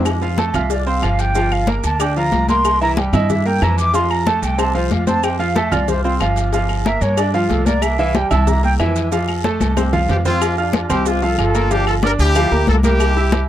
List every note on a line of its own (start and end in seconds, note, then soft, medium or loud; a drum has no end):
0.00 0.49 F2 medium
0.05 cowbell loud
0.05 high conga soft
0.05 low agogo loud
0.05 long guiro medium
0.05 claves medium
0.05 maracas medium
0.22 0.35 F3 medium
0.22 0.35 F4 medium
0.22 0.35 F5 medium
0.22 high conga soft
0.22 maracas soft
0.38 0.51 A3 medium
0.38 0.51 A4 medium
0.38 0.52 A5 medium
0.38 cowbell medium
0.38 high conga loud
0.38 low agogo medium
0.38 short guiro medium
0.38 maracas soft
0.54 0.99 C2 loud
0.54 0.81 F4 medium
0.54 0.73 E5 medium
0.54 0.81 F5 medium
0.54 0.81 F6 medium
0.54 cowbell medium
0.54 high conga soft
0.54 low conga medium
0.54 low agogo loud
0.54 short guiro medium
0.54 claves medium
0.54 maracas medium
0.70 0.87 D5 medium
0.70 cowbell loud
0.70 high conga soft
0.70 long guiro medium
0.70 maracas medium
0.86 1.00 C4 medium
0.86 1.00 C5 medium
0.86 1.21 F5 medium
0.86 1.00 C6 medium
0.86 high conga soft
0.86 maracas soft
1.02 1.78 G1 medium
1.02 1.29 F3 medium
1.02 1.30 F4 medium
1.02 1.30 F5 medium
1.02 cowbell medium
1.02 high conga soft
1.02 low agogo loud
1.02 short guiro medium
1.02 claves medium
1.02 maracas soft
1.19 1.54 G5 loud
1.19 cowbell medium
1.19 high conga soft
1.19 short guiro medium
1.19 maracas medium
1.35 1.62 F3 medium
1.35 1.62 F4 medium
1.35 1.62 F5 medium
1.35 cowbell loud
1.35 high conga soft
1.35 low agogo medium
1.35 long guiro medium
1.35 maracas loud
1.51 1.68 F5 medium
1.51 high conga soft
1.51 low agogo loud
1.51 claves medium
1.51 maracas soft
1.67 1.95 A#3 medium
1.67 1.95 A#4 medium
1.67 1.95 A#5 medium
1.67 cowbell medium
1.67 high conga loud
1.67 short guiro medium
1.67 maracas soft
1.84 2.29 D2 loud
1.84 2.03 A5 medium
1.84 cowbell medium
1.84 low agogo loud
1.84 short guiro medium
1.84 maracas medium
2.00 2.13 D4 medium
2.00 2.14 D5 medium
2.00 2.17 G5 medium
2.00 2.14 D6 medium
2.00 cowbell loud
2.00 high conga soft
2.00 low agogo loud
2.00 long guiro medium
2.00 claves medium
2.00 maracas loud
2.16 2.43 F3 medium
2.16 2.43 F4 medium
2.16 2.43 F5 medium
2.16 2.47 A#5 loud
2.16 high conga soft
2.16 maracas soft
2.32 3.08 C2 medium
2.32 cowbell medium
2.32 high conga medium
2.32 low agogo medium
2.32 short guiro medium
2.32 maracas soft
2.48 2.75 A#3 medium
2.48 2.76 A#4 medium
2.48 2.76 A#5 medium
2.48 2.79 C6 loud
2.48 cowbell medium
2.48 high conga medium
2.48 short guiro medium
2.48 maracas medium
2.65 cowbell loud
2.65 high conga soft
2.65 low agogo loud
2.65 long guiro medium
2.65 claves medium
2.65 maracas loud
2.81 2.94 E3 medium
2.81 2.94 E4 medium
2.81 2.95 E5 medium
2.81 2.92 A#5 medium
2.81 high conga soft
2.81 maracas soft
2.97 3.10 G3 medium
2.97 3.11 G4 medium
2.97 3.11 G5 medium
2.97 cowbell medium
2.97 high conga loud
2.97 low agogo medium
2.97 short guiro medium
2.97 maracas soft
3.13 3.58 G2 loud
3.13 3.40 E4 medium
3.13 3.33 D#5 medium
3.13 3.40 E5 medium
3.13 3.40 E6 medium
3.13 cowbell medium
3.13 high conga soft
3.13 low conga loud
3.13 low agogo loud
3.13 short guiro medium
3.13 claves medium
3.13 maracas medium
3.30 3.48 E5 medium
3.30 cowbell loud
3.30 high conga soft
3.30 low conga medium
3.30 long guiro medium
3.30 maracas medium
3.45 3.59 A#3 medium
3.45 3.59 A#4 medium
3.45 3.64 G5 loud
3.45 3.59 A#5 medium
3.45 high conga soft
3.45 maracas soft
3.62 4.37 F2 medium
3.62 3.88 E3 medium
3.62 3.88 E4 medium
3.62 3.89 E5 medium
3.62 3.78 A#5 medium
3.62 cowbell medium
3.62 high conga soft
3.62 low timbale medium
3.62 low agogo loud
3.62 short guiro medium
3.62 claves medium
3.62 maracas soft
3.78 3.97 D6 loud
3.78 cowbell medium
3.78 high conga soft
3.78 short guiro medium
3.78 maracas medium
3.94 4.21 F3 medium
3.94 4.21 F4 medium
3.94 4.21 F5 medium
3.94 4.12 C6 loud
3.94 cowbell loud
3.94 high conga soft
3.94 low agogo medium
3.94 long guiro medium
3.94 maracas loud
4.10 4.28 A#5 medium
4.10 high conga soft
4.10 low agogo loud
4.10 claves medium
4.10 maracas soft
4.26 4.53 A3 medium
4.26 4.53 A4 medium
4.26 4.43 A5 medium
4.26 4.53 A5 medium
4.26 cowbell medium
4.26 high conga loud
4.26 short guiro medium
4.26 maracas soft
4.42 4.88 C2 loud
4.42 4.61 G5 medium
4.42 cowbell medium
4.42 low agogo loud
4.42 short guiro medium
4.42 maracas medium
4.58 4.72 C4 medium
4.58 4.72 C5 medium
4.58 4.75 A5 loud
4.58 4.72 C6 medium
4.58 cowbell loud
4.58 high conga soft
4.58 low agogo loud
4.58 long guiro medium
4.58 claves medium
4.58 maracas loud
4.75 5.01 F3 medium
4.75 5.02 F4 medium
4.75 4.94 C5 medium
4.75 5.02 F5 medium
4.75 high conga soft
4.75 maracas soft
4.91 5.67 F2 medium
4.91 5.07 F5 medium
4.91 cowbell medium
4.91 high conga medium
4.91 low agogo medium
4.91 short guiro medium
4.91 maracas soft
5.07 5.34 C4 medium
5.07 5.34 C5 medium
5.07 5.25 A5 loud
5.07 5.34 C6 medium
5.07 cowbell medium
5.07 high conga medium
5.07 short guiro medium
5.07 maracas medium
5.23 5.39 G5 medium
5.23 cowbell loud
5.23 high conga soft
5.23 low agogo loud
5.23 long guiro medium
5.23 claves medium
5.23 maracas loud
5.39 5.53 F3 medium
5.39 5.53 F4 loud
5.39 5.53 F5 medium
5.39 5.58 F5 medium
5.39 high conga soft
5.39 maracas soft
5.55 5.69 A3 medium
5.55 5.69 A4 medium
5.55 5.74 E5 medium
5.55 5.69 A5 medium
5.55 cowbell medium
5.55 high conga loud
5.55 low agogo loud
5.55 short guiro medium
5.55 maracas soft
5.71 6.17 C2 loud
5.71 5.98 F4 medium
5.71 5.90 D5 medium
5.71 5.99 F5 medium
5.71 5.99 F6 medium
5.71 cowbell medium
5.71 high conga soft
5.71 low conga medium
5.71 low agogo loud
5.71 short guiro medium
5.71 claves medium
5.71 maracas medium
5.88 6.03 C5 medium
5.88 cowbell loud
5.88 high conga soft
5.88 low conga medium
5.88 long guiro medium
5.88 maracas medium
6.04 6.18 C4 medium
6.04 6.14 F4 medium
6.04 6.18 C5 medium
6.04 6.18 C6 medium
6.04 high conga soft
6.04 maracas soft
6.20 6.96 G1 medium
6.20 6.48 F3 medium
6.20 6.48 F4 medium
6.20 6.48 F5 medium
6.20 cowbell medium
6.20 high conga soft
6.20 low agogo loud
6.20 short guiro medium
6.20 claves medium
6.20 maracas soft
6.36 cowbell medium
6.36 high conga soft
6.36 short guiro medium
6.36 maracas medium
6.52 6.80 F3 medium
6.52 6.80 F4 medium
6.52 6.80 F5 medium
6.52 cowbell loud
6.52 high conga soft
6.52 low agogo loud
6.52 long guiro medium
6.52 maracas medium
6.69 high conga soft
6.69 low agogo loud
6.69 claves medium
6.69 maracas soft
6.85 7.12 A#3 medium
6.85 7.13 A#4 medium
6.85 7.03 E5 medium
6.85 7.13 A#5 medium
6.85 cowbell medium
6.85 high conga loud
6.85 short guiro medium
6.85 maracas soft
7.01 7.47 G2 loud
7.01 7.20 C#5 medium
7.01 cowbell medium
7.01 low agogo loud
7.01 short guiro medium
7.01 maracas medium
7.17 7.31 D4 medium
7.17 7.32 D5 medium
7.17 7.34 D5 medium
7.17 7.32 D6 medium
7.17 cowbell loud
7.17 high conga soft
7.17 low agogo loud
7.17 long guiro medium
7.17 claves medium
7.17 maracas loud
7.34 7.61 F3 loud
7.34 7.51 F4 medium
7.34 7.61 F4 medium
7.34 7.61 F5 loud
7.34 high conga soft
7.34 maracas soft
7.50 8.25 C2 loud
7.50 7.67 A4 medium
7.50 cowbell medium
7.50 high conga medium
7.50 low agogo medium
7.50 short guiro medium
7.50 maracas soft
7.65 7.93 A#3 medium
7.65 7.93 A#4 medium
7.65 7.83 D5 loud
7.65 7.93 A#5 medium
7.65 cowbell medium
7.65 high conga medium
7.65 short guiro medium
7.65 maracas medium
7.82 8.00 E5 medium
7.82 cowbell loud
7.82 high conga soft
7.82 low agogo loud
7.82 long guiro medium
7.82 claves medium
7.82 maracas loud
7.98 8.12 E3 medium
7.98 8.12 E4 loud
7.98 8.13 E5 loud
7.98 8.17 F5 medium
7.98 high conga soft
7.98 maracas soft
8.15 8.28 G3 medium
8.15 8.29 G4 medium
8.15 8.30 G5 medium
8.15 8.29 G5 medium
8.15 cowbell medium
8.15 high conga loud
8.15 low agogo loud
8.15 short guiro medium
8.15 maracas soft
8.31 8.76 C2 loud
8.31 8.57 E4 medium
8.31 8.58 E5 medium
8.31 8.50 A5 medium
8.31 8.58 E6 medium
8.31 cowbell medium
8.31 high conga soft
8.31 low conga medium
8.31 low agogo loud
8.31 short guiro medium
8.31 claves medium
8.31 maracas medium
8.47 8.64 A#5 loud
8.47 cowbell loud
8.47 high conga soft
8.47 low conga medium
8.47 long guiro medium
8.47 maracas medium
8.63 8.77 A#3 medium
8.63 8.77 A#4 medium
8.63 8.74 G5 loud
8.63 8.77 A#5 medium
8.63 high conga soft
8.63 maracas soft
8.79 9.55 F2 loud
8.79 9.06 E3 medium
8.79 9.06 E4 medium
8.79 9.06 E5 medium
8.79 cowbell medium
8.79 high conga soft
8.79 low timbale medium
8.79 low agogo loud
8.79 short guiro medium
8.79 claves medium
8.79 maracas soft
8.96 cowbell medium
8.96 high conga soft
8.96 short guiro medium
8.96 maracas medium
9.12 9.39 F3 medium
9.12 9.39 F4 medium
9.12 9.39 F5 medium
9.12 cowbell loud
9.12 high conga soft
9.12 low agogo medium
9.12 long guiro medium
9.12 maracas loud
9.28 high conga soft
9.28 low agogo loud
9.28 claves medium
9.28 maracas soft
9.44 9.71 A3 medium
9.44 9.71 A4 medium
9.44 9.71 A5 medium
9.44 cowbell medium
9.44 high conga loud
9.44 short guiro medium
9.44 maracas soft
9.60 10.06 C2 loud
9.60 cowbell medium
9.60 high conga medium
9.60 low agogo medium
9.60 short guiro medium
9.60 maracas medium
9.77 9.90 C4 medium
9.77 9.90 C5 medium
9.77 9.90 C6 medium
9.77 cowbell loud
9.77 high conga medium
9.77 low agogo loud
9.77 long guiro medium
9.77 claves medium
9.77 maracas loud
9.93 10.19 F3 medium
9.93 10.20 F4 medium
9.93 10.20 F5 loud
9.93 low conga medium
9.93 maracas soft
10.09 10.84 F2 loud
10.09 10.18 C4 medium
10.09 10.17 G4 medium
10.09 cowbell medium
10.09 low conga medium
10.09 low timbale medium
10.09 low agogo medium
10.09 short guiro medium
10.09 maracas soft
10.25 10.39 C4 medium
10.25 10.56 C4 medium
10.25 10.56 F4 loud
10.25 10.39 C5 medium
10.25 10.39 C6 medium
10.25 cowbell medium
10.25 low conga medium
10.25 short guiro medium
10.25 maracas medium
10.41 cowbell loud
10.41 high conga soft
10.41 low agogo loud
10.41 long guiro medium
10.41 claves medium
10.41 maracas loud
10.57 10.88 D4 medium
10.57 10.84 F4 medium
10.57 10.88 F4 medium
10.57 10.84 F5 medium
10.57 10.85 F6 medium
10.57 high conga soft
10.57 maracas soft
10.73 cowbell medium
10.73 high conga loud
10.73 low agogo medium
10.73 short guiro medium
10.73 maracas soft
10.90 11.35 C2 loud
10.90 11.16 C4 medium
10.90 11.06 E4 medium
10.90 11.05 G4 loud
10.90 11.17 C5 medium
10.90 11.17 C6 medium
10.90 cowbell medium
10.90 high conga soft
10.90 low conga medium
10.90 low agogo loud
10.90 short guiro medium
10.90 claves medium
10.90 maracas medium
11.06 11.23 C4 medium
11.06 11.23 F4 loud
11.06 cowbell loud
11.06 high conga soft
11.06 long guiro medium
11.06 maracas medium
11.22 11.49 F3 medium
11.22 11.49 F4 medium
11.22 11.39 F4 medium
11.22 11.38 A4 medium
11.22 11.49 F5 medium
11.22 high conga soft
11.22 maracas soft
11.38 12.14 G1 loud
11.38 11.69 F4 loud
11.38 11.69 A4 loud
11.38 cowbell medium
11.38 high conga soft
11.38 low agogo loud
11.38 short guiro medium
11.38 claves medium
11.38 maracas soft
11.55 11.68 A#3 medium
11.55 11.68 A#4 medium
11.55 11.68 A#5 medium
11.55 cowbell medium
11.55 high conga soft
11.55 short guiro medium
11.55 maracas medium
11.71 11.97 F3 medium
11.71 11.88 D4 medium
11.71 11.98 F4 medium
11.71 11.87 G4 loud
11.71 11.98 F5 medium
11.71 cowbell loud
11.71 high conga soft
11.71 low agogo medium
11.71 long guiro medium
11.71 maracas loud
11.87 11.95 F4 medium
11.87 11.95 A4 medium
11.87 high conga soft
11.87 low agogo loud
11.87 claves medium
11.87 maracas soft
12.03 12.30 D4 medium
12.03 12.12 G4 medium
12.03 12.12 A#4 loud
12.03 12.30 D5 medium
12.03 12.30 D6 medium
12.03 cowbell medium
12.03 high conga loud
12.03 short guiro medium
12.03 maracas soft
12.19 12.49 D2 loud
12.19 12.65 E4 medium
12.19 12.65 G4 loud
12.19 cowbell medium
12.19 low agogo loud
12.19 short guiro medium
12.19 maracas medium
12.35 12.49 F3 medium
12.35 12.49 F4 medium
12.35 12.49 F5 medium
12.35 cowbell loud
12.35 high conga soft
12.35 low agogo loud
12.35 long guiro medium
12.35 claves medium
12.35 maracas loud
12.51 12.67 D2 medium
12.51 12.78 A#3 medium
12.51 12.78 A#4 medium
12.51 12.78 A#5 medium
12.51 high conga soft
12.51 maracas soft
12.67 13.43 C2 loud
12.67 12.77 F4 medium
12.67 12.76 A4 loud
12.67 cowbell medium
12.67 high conga medium
12.67 low agogo medium
12.67 short guiro medium
12.67 maracas soft
12.83 13.11 A#3 medium
12.83 13.45 E4 medium
12.83 13.45 G4 loud
12.83 13.11 A#4 medium
12.83 13.11 A#5 medium
12.83 cowbell medium
12.83 high conga medium
12.83 short guiro medium
12.83 maracas medium
13.00 cowbell loud
13.00 high conga soft
13.00 low agogo loud
13.00 long guiro medium
13.00 claves medium
13.00 maracas loud
13.16 13.43 E4 medium
13.16 13.43 E5 medium
13.16 13.43 E6 medium
13.16 high conga soft
13.16 maracas soft
13.32 cowbell medium
13.32 high conga loud
13.32 low agogo medium
13.32 short guiro medium
13.32 maracas soft